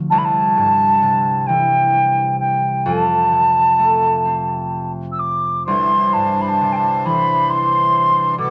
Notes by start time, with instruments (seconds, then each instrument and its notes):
Already playing: harp D2 D3 F3
0.10 harp C2, flute A5
0.18 flute B5
0.25 flute A5
0.57 harp G2
1.02 harp C3
1.47 harp E3, flute G5
2.40 flute G5
2.85 harp F2, flute A5
3.32 harp C3
3.79 harp A3
4.25 harp C4
5.12 flute E6
5.19 flute D6
5.67 harp C2, accordion E3 D4 C5, flute C6
6.13 harp G2, flute A5
6.42 flute B5
6.48 flute A5
6.61 harp C3
6.73 flute G5 A5
7.06 harp E3, flute B5
7.50 flute C6
8.38 harp B2, accordion B2 G3 B3 A4, flute D6